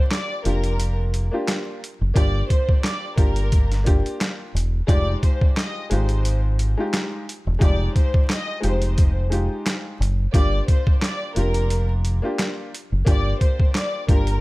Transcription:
Already playing: upright piano A#3 D4 F4 G4
0.11 violin section D5, snare, clap, closed hi-hat
0.44 fingered electric bass F1, upright piano A#3 D4 F4 G4, violin section A#4, closed hi-hat
0.64 closed hi-hat
0.80 closed hi-hat
1.14 closed hi-hat
1.31 upright piano A#3 D4 F4 G4
1.48 snare, clap, closed hi-hat
1.84 closed hi-hat
2.01 fingered electric bass F#1
2.14 fingered electric bass G1, upright piano A#3 D4 F4 G4, violin section D5, kick, closed hi-hat
2.49 violin section C5, kick, closed hi-hat
2.69 kick
2.84 violin section D5, snare, clap, closed hi-hat
3.16 fingered electric bass G1, upright piano A#3 D4 F4 G4, violin section A#4, kick, closed hi-hat
3.36 closed hi-hat
3.52 kick, closed hi-hat
3.72 snare, closed hi-hat
3.84 upright piano A#3 D4 F4 G4, kick, closed hi-hat
4.06 closed hi-hat
4.21 snare, clap, closed hi-hat
4.54 fingered electric bass E1, closed hi-hat
4.87 fingered electric bass F1, upright piano G#3 D#4 F4 G4, violin section D5, kick, closed hi-hat
5.22 violin section C5, kick, closed hi-hat
5.41 kick
5.57 violin section D#5, snare, clap, closed hi-hat
5.90 fingered electric bass G#1, upright piano G#3 D#4 F4 G4, violin section C5, closed hi-hat
6.09 closed hi-hat
6.25 closed hi-hat
6.59 closed hi-hat
6.77 upright piano G#3 D#4 F4 G4
6.93 snare, clap, closed hi-hat
7.29 closed hi-hat
7.47 fingered electric bass E1
7.59 fingered electric bass F1, upright piano G#3 D#4 F4 G4, violin section D5, kick, closed hi-hat
7.96 violin section C5, kick, closed hi-hat
8.14 kick
8.30 violin section D#5, snare, clap, closed hi-hat
8.60 fingered electric bass F1, upright piano G#3 D#4 F4 G4, violin section C5, closed hi-hat
8.82 closed hi-hat
8.98 kick, closed hi-hat
9.30 upright piano G#3 D#4 F4 G4, closed hi-hat
9.66 snare, clap, closed hi-hat
10.00 fingered electric bass F#1, closed hi-hat
10.32 fingered electric bass G1, upright piano A#3 D4 F4 G4, violin section D5, kick, closed hi-hat
10.68 violin section C5, kick, closed hi-hat
10.87 kick
11.02 violin section D5, snare, clap, closed hi-hat
11.34 fingered electric bass F1, upright piano A#3 D4 F4 G4, violin section A#4, closed hi-hat
11.54 closed hi-hat
11.70 closed hi-hat
12.05 closed hi-hat
12.22 upright piano A#3 D4 F4 G4
12.39 snare, clap, closed hi-hat
12.75 closed hi-hat
12.92 fingered electric bass F#1
13.05 fingered electric bass G1, upright piano A#3 D4 F4 G4, violin section D5, kick, closed hi-hat
13.40 violin section C5, kick, closed hi-hat
13.60 kick
13.75 violin section D5, snare, clap, closed hi-hat
14.07 fingered electric bass G1, upright piano A#3 D4 F4 G4, violin section A#4, kick, closed hi-hat
14.27 closed hi-hat

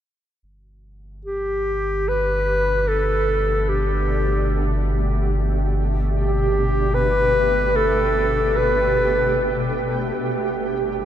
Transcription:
0.43 sub bass G1, ambient pad B2
0.60 ambient pad A3
0.89 ambient pad G4
1.00 ambient pad D4
1.25 clarinet G4
2.09 clarinet B4
2.88 clarinet A4
3.69 clarinet G4
6.15 clarinet G4
6.94 clarinet B4
7.76 clarinet A4
8.57 clarinet B4
10.16 sub bass G1, ambient pad C3
10.23 ambient pad G3

